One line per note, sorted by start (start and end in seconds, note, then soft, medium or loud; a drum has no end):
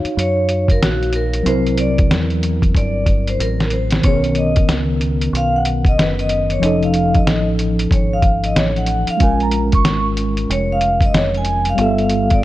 0.00 1.42 D#4 medium
0.00 1.41 F#4 medium
0.00 1.44 C#5 medium
0.00 1.43 F5 medium
0.05 muted fingered electric bass stroke soft
0.05 closed hi-hat soft
0.17 0.78 F#2 medium
0.17 0.67 C#5 medium
0.17 closed hi-hat medium
0.49 closed hi-hat medium
0.68 0.82 A#4 medium
0.68 kick medium
0.68 closed hi-hat medium
0.81 1.43 A#1 medium
0.81 1.13 F#4 medium
0.81 snare loud
0.81 closed hi-hat loud
1.03 closed hi-hat soft
1.13 1.48 A#4 medium
1.13 closed hi-hat medium
1.33 closed hi-hat medium
1.43 2.10 C2 loud
1.43 3.99 F#3 medium
1.43 4.00 C4 medium
1.43 closed hi-hat medium
1.47 4.01 E4 medium
1.47 4.02 A#4 medium
1.47 1.80 C5 loud
1.66 closed hi-hat soft
1.77 2.09 D5 loud
1.77 closed hi-hat medium
1.98 kick loud
1.98 closed hi-hat medium
2.10 2.72 E2 medium
2.10 snare loud
2.10 closed hi-hat medium
2.30 closed hi-hat soft
2.43 closed hi-hat medium
2.62 kick medium
2.62 closed hi-hat medium
2.75 3.36 G1 medium
2.75 3.25 D5 medium
2.75 kick medium
2.75 closed hi-hat medium
3.06 kick medium
3.06 closed hi-hat medium
3.27 3.35 C5 medium
3.27 closed hi-hat medium
3.39 4.01 A1 medium
3.39 3.74 A#4 medium
3.39 closed hi-hat medium
3.60 snare medium
3.60 closed hi-hat soft
3.70 4.06 C5 medium
3.70 closed hi-hat medium
3.91 snare medium
3.91 closed hi-hat medium
4.01 4.65 B1 medium
4.01 6.57 D#3 medium
4.01 6.58 B3 medium
4.01 kick loud
4.01 closed hi-hat medium
4.05 6.59 C#4 medium
4.05 4.14 G#4 medium
4.05 4.38 C#5 loud
4.14 6.63 A#4 medium
4.24 closed hi-hat soft
4.35 4.67 D#5 medium
4.35 closed hi-hat medium
4.56 kick loud
4.56 closed hi-hat medium
4.68 5.30 C#2 medium
4.68 snare loud
4.68 closed hi-hat loud
5.01 closed hi-hat medium
5.21 closed hi-hat medium
5.33 5.94 B1 medium
5.33 5.56 F5 medium
5.33 closed hi-hat medium
5.56 5.88 F#5 loud
5.65 closed hi-hat medium
5.85 5.99 D#5 loud
5.85 kick loud
5.85 closed hi-hat medium
5.97 6.59 F#1 medium
5.97 6.18 B4 medium
5.97 snare loud
5.97 closed hi-hat loud
6.19 6.52 D#5 medium
6.19 closed hi-hat soft
6.29 closed hi-hat medium
6.50 6.62 C#5 medium
6.50 closed hi-hat medium
6.60 7.23 F1 loud
6.60 9.15 F3 medium
6.60 9.16 C#4 medium
6.60 closed hi-hat medium
6.64 9.17 D#4 medium
6.64 9.18 A4 medium
6.64 6.84 D#5 medium
6.83 7.16 F5 medium
6.83 closed hi-hat soft
6.94 closed hi-hat medium
7.15 7.45 D#5 medium
7.15 kick medium
7.15 closed hi-hat medium
7.26 7.88 A1 medium
7.26 snare loud
7.26 closed hi-hat medium
7.59 closed hi-hat medium
7.79 closed hi-hat medium
7.91 8.52 G#1 medium
7.91 8.13 C#5 medium
7.91 kick medium
7.91 closed hi-hat medium
8.13 8.46 F5 medium
8.22 kick loud
8.22 closed hi-hat medium
8.44 8.57 D#5 medium
8.44 closed hi-hat medium
8.56 9.05 A1 medium
8.56 8.77 C#5 medium
8.56 snare loud
8.56 closed hi-hat loud
8.76 9.07 F#5 medium
8.76 closed hi-hat soft
8.86 closed hi-hat medium
9.07 9.22 F5 medium
9.07 muted fingered electric bass stroke soft
9.07 closed hi-hat medium
9.17 9.85 A#1 loud
9.17 11.73 G#3 medium
9.17 11.74 C#4 medium
9.17 kick loud
9.17 closed hi-hat medium
9.21 11.75 F4 medium
9.21 11.76 A#4 medium
9.21 9.42 G#5 loud
9.40 9.57 A#5 medium
9.40 closed hi-hat soft
9.51 closed hi-hat medium
9.72 10.04 C#6 loud
9.72 kick medium
9.72 closed hi-hat medium
9.85 10.46 G#1 medium
9.85 snare loud
9.85 closed hi-hat medium
10.17 closed hi-hat medium
10.37 closed hi-hat medium
10.49 11.11 F1 medium
10.49 10.71 C#5 medium
10.49 closed hi-hat medium
10.72 11.04 F5 medium
10.81 closed hi-hat medium
11.01 kick medium
11.01 closed hi-hat medium
11.05 11.16 D#5 loud
11.14 11.75 F1 medium
11.14 11.34 C#5 medium
11.14 snare loud
11.14 closed hi-hat medium
11.34 11.66 G#5 loud
11.34 closed hi-hat soft
11.45 closed hi-hat medium
11.65 closed hi-hat medium
11.69 11.74 F5 loud
11.75 12.40 G1 loud
11.75 12.44 G3 medium
11.75 12.44 B3 medium
11.75 closed hi-hat medium
11.79 12.44 F4 medium
11.79 12.44 A4 medium
11.79 12.01 E5 medium
11.98 12.33 F5 medium
11.98 closed hi-hat soft
12.10 closed hi-hat medium
12.30 12.44 D5 medium
12.30 kick medium
12.30 closed hi-hat medium